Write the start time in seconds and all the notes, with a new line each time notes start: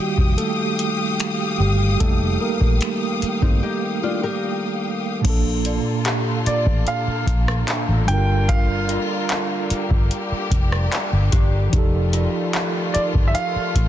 Already playing: D#3 G3 A#3 D#4 F#4 G4 F5 G5 D#6
0.18 F1, kick
0.38 A3 A4, closed hi-hat
0.79 closed hi-hat
1.20 finger snap, closed hi-hat
1.60 G1 G3 G4
2.00 F1 G3 A3 A#3 D#4 A4, kick, closed hi-hat
2.41 A#3 A#4
2.61 A#1, kick
2.81 finger snap, closed hi-hat
3.22 muted fingered electric bass stroke, closed hi-hat
3.42 G1 C4 D#4, kick
3.63 D#4 G4
4.03 D4 F4
4.23 G4 A#4
5.21 A#1 A#2 D3 A#3 F4 A4, kick, closed hi-hat, crash
5.27 D4 A4
5.65 D5, closed hi-hat
6.05 G4, clap, closed hi-hat
6.46 D5, muted fingered electric bass stroke, closed hi-hat
6.66 A1, kick
6.87 F5, closed hi-hat
7.07 muted fingered electric bass stroke
7.27 A#1, kick, closed hi-hat
7.48 cross-stick
7.68 D4, clap, closed hi-hat
7.89 A1
7.93 F4
8.05 G1 G3 D4 F4 G5, closed hi-hat
8.10 F4 A#4
8.18 G4
8.49 F5, kick, closed hi-hat
8.89 F4, closed hi-hat
9.29 clap, closed hi-hat
9.70 G4, muted fingered electric bass stroke, closed hi-hat
9.91 G1, kick
10.11 closed hi-hat
10.32 muted fingered electric bass stroke
10.51 F1, kick, closed hi-hat
10.72 cross-stick
10.92 clap, closed hi-hat
11.13 G1
11.32 G1 G4, kick, closed hi-hat
11.70 F1 D#3 F3 A3 D#4 F4, kick, closed hi-hat
11.75 G4 A4
12.13 F4, closed hi-hat
12.53 clap, closed hi-hat
12.94 D5, muted fingered electric bass stroke, closed hi-hat
13.15 G1, kick
13.28 E5
13.35 F5, closed hi-hat
13.56 muted fingered electric bass stroke
13.75 A1, kick, closed hi-hat